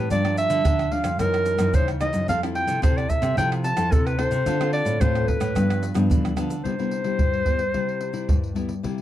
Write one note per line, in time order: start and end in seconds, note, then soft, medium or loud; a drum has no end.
0.10 0.45 G2 medium
0.10 0.63 G2 medium
0.10 0.20 F3 medium
0.10 0.20 A#3 medium
0.10 0.20 D4 medium
0.10 0.36 D5 loud
0.10 pandeiro medium
0.10 shaker medium
0.10 surdo medium
0.25 0.61 F3 medium
0.25 0.61 A#3 medium
0.25 0.61 D4 medium
0.25 pandeiro soft
0.25 tamborim medium
0.25 shaker soft
0.37 0.94 E5 loud
0.37 pandeiro medium
0.37 shaker medium
0.50 0.62 D3 medium
0.50 pandeiro medium
0.50 shaker medium
0.65 0.88 D3 medium
0.65 1.17 D3 medium
0.65 0.81 F3 medium
0.65 0.81 A#3 medium
0.65 0.82 D4 medium
0.65 pandeiro medium
0.65 tamborim medium
0.65 shaker medium
0.65 surdo loud
0.79 pandeiro soft
0.79 tamborim medium
0.79 shaker soft
0.91 1.08 F3 medium
0.91 1.08 A#3 medium
0.91 1.08 D4 medium
0.91 1.19 F5 medium
0.91 pandeiro medium
1.04 1.16 F2 medium
1.04 pandeiro medium
1.04 tamborim medium
1.04 shaker medium
1.19 1.54 F#2 medium
1.19 1.71 F#2 medium
1.19 1.56 E3 soft
1.19 1.56 A#3 medium
1.19 1.57 D#4 medium
1.19 1.76 A#4 loud
1.19 pandeiro medium
1.19 tamborim medium
1.19 shaker medium
1.19 surdo medium
1.34 pandeiro soft
1.34 tamborim medium
1.34 shaker soft
1.46 pandeiro medium
1.46 shaker medium
1.58 1.71 F#2 loud
1.58 1.96 E3 medium
1.58 1.97 A#3 medium
1.58 1.97 D#4 medium
1.58 pandeiro medium
1.58 tamborim medium
1.58 shaker medium
1.74 2.09 C#3 medium
1.74 2.26 C#3 medium
1.74 1.88 C5 medium
1.74 pandeiro medium
1.74 shaker medium
1.74 surdo medium
1.88 pandeiro soft
1.88 tamborim medium
1.88 shaker soft
2.01 2.26 E3 medium
2.01 2.26 A#3 medium
2.01 2.26 D#4 medium
2.01 2.26 D#5 medium
2.01 pandeiro medium
2.01 tamborim medium
2.01 shaker medium
2.13 2.25 F#2 medium
2.13 pandeiro medium
2.13 shaker medium
2.28 2.63 F2 medium
2.28 2.81 F3 medium
2.28 2.37 C4 medium
2.28 2.37 E4 medium
2.28 2.37 A4 medium
2.28 2.41 F5 loud
2.28 pandeiro medium
2.28 shaker medium
2.28 surdo medium
2.43 2.79 C4 medium
2.43 2.79 E4 medium
2.43 2.79 A4 medium
2.43 pandeiro soft
2.43 tamborim medium
2.43 shaker soft
2.55 2.81 G5 loud
2.55 pandeiro medium
2.67 2.80 C3 medium
2.67 pandeiro medium
2.67 shaker medium
2.82 3.06 C3 medium
2.82 3.35 C3 medium
2.82 3.18 C4 medium
2.82 3.19 E4 medium
2.82 3.19 A4 medium
2.82 2.99 C5 medium
2.82 pandeiro medium
2.82 tamborim medium
2.82 shaker medium
2.82 surdo loud
2.97 3.11 D5 medium
2.97 pandeiro soft
2.97 tamborim medium
2.97 shaker soft
3.09 3.37 E5 loud
3.09 pandeiro medium
3.09 shaker medium
3.09 surdo medium
3.22 3.34 C3 loud
3.22 pandeiro medium
3.22 tamborim medium
3.22 shaker medium
3.37 3.72 C3 medium
3.37 3.90 F3 medium
3.37 3.63 C4 medium
3.37 3.64 E4 medium
3.37 3.64 A4 medium
3.37 3.50 G5 loud
3.37 pandeiro medium
3.37 tamborim medium
3.37 shaker medium
3.37 surdo medium
3.52 pandeiro soft
3.52 tamborim medium
3.52 shaker soft
3.64 3.94 A5 loud
3.64 pandeiro medium
3.64 shaker medium
3.77 3.89 F2 loud
3.77 4.14 C4 medium
3.77 4.14 E4 medium
3.77 4.15 A4 medium
3.77 pandeiro medium
3.77 tamborim medium
3.77 shaker medium
3.92 4.27 C3 medium
3.92 4.44 C3 medium
3.92 4.08 A4 medium
3.92 pandeiro medium
3.92 shaker medium
3.92 surdo loud
4.06 4.20 B4 medium
4.06 pandeiro soft
4.06 tamborim medium
4.06 shaker soft
4.18 4.36 C4 medium
4.18 4.37 E4 medium
4.18 4.37 A4 medium
4.18 4.72 C5 loud
4.18 pandeiro medium
4.18 tamborim medium
4.31 4.43 C3 medium
4.31 pandeiro medium
4.31 shaker medium
4.46 4.81 D3 medium
4.46 4.98 D3 medium
4.46 4.55 C4 medium
4.46 4.55 F4 medium
4.46 4.55 A4 medium
4.46 pandeiro medium
4.46 shaker medium
4.46 surdo medium
4.61 4.97 C4 medium
4.61 4.97 F4 medium
4.61 4.97 A4 medium
4.61 pandeiro soft
4.61 tamborim medium
4.61 shaker soft
4.73 5.02 D5 loud
4.73 pandeiro medium
4.85 4.98 A2 medium
4.85 pandeiro medium
4.85 shaker medium
5.01 5.24 A2 medium
5.01 5.53 A2 medium
5.01 5.36 C4 medium
5.01 5.36 F4 medium
5.01 5.37 A4 medium
5.01 5.29 C5 loud
5.01 pandeiro medium
5.01 tamborim medium
5.01 shaker medium
5.01 surdo medium
5.15 pandeiro soft
5.15 tamborim medium
5.15 shaker soft
5.27 6.10 B4 medium
5.27 pandeiro medium
5.27 surdo medium
5.40 5.53 A2 medium
5.40 pandeiro medium
5.40 tamborim medium
5.40 shaker medium
5.55 5.90 G2 loud
5.55 6.07 G2 medium
5.55 5.92 F3 medium
5.55 5.92 B3 medium
5.55 5.93 D4 medium
5.55 pandeiro medium
5.55 tamborim medium
5.55 shaker medium
5.55 surdo medium
5.70 pandeiro soft
5.70 tamborim medium
5.70 shaker soft
5.83 pandeiro medium
5.83 shaker medium
5.94 6.07 G2 medium
5.94 6.32 F3 medium
5.94 6.32 B3 medium
5.94 6.33 D4 medium
5.94 pandeiro medium
5.94 tamborim medium
5.94 shaker medium
6.10 6.62 D3 medium
6.10 6.34 E3 medium
6.10 pandeiro medium
6.10 shaker medium
6.10 surdo loud
6.25 pandeiro soft
6.25 tamborim medium
6.25 shaker soft
6.36 6.61 D3 medium
6.36 6.55 F3 medium
6.36 6.55 B3 medium
6.36 6.55 D4 medium
6.36 pandeiro medium
6.36 tamborim medium
6.36 shaker medium
6.50 pandeiro medium
6.50 shaker medium
6.64 7.16 C3 medium
6.64 6.74 G3 soft
6.64 6.74 B3 medium
6.64 6.74 E4 soft
6.64 8.52 C5 loud
6.64 pandeiro medium
6.64 surdo soft
6.79 7.01 G3 medium
6.79 7.02 B3 medium
6.79 7.02 E4 medium
6.79 pandeiro soft
6.91 pandeiro medium
7.04 7.41 G3 medium
7.04 7.42 E4 medium
7.04 pandeiro soft
7.19 7.71 G2 medium
7.19 pandeiro medium
7.19 surdo medium
7.33 pandeiro soft
7.45 7.62 G3 soft
7.45 7.62 B3 soft
7.45 7.62 E4 medium
7.45 pandeiro medium
7.45 surdo medium
7.59 pandeiro soft
7.74 8.26 C3 medium
7.74 8.10 G3 soft
7.74 8.11 E4 medium
7.74 pandeiro medium
7.74 surdo soft
7.89 pandeiro soft
8.01 pandeiro medium
8.13 8.50 G3 medium
8.13 8.51 E4 medium
8.13 pandeiro medium
8.28 8.80 G2 medium
8.28 pandeiro medium
8.28 surdo medium
8.44 pandeiro soft
8.55 8.73 G3 soft
8.55 8.73 B3 medium
8.55 8.74 E4 medium
8.55 pandeiro medium
8.69 pandeiro soft
8.83 9.02 C3 medium
8.83 9.02 G3 soft
8.83 9.02 A#3 soft
8.83 9.02 E4 medium
8.83 pandeiro medium
8.83 surdo soft
8.98 pandeiro soft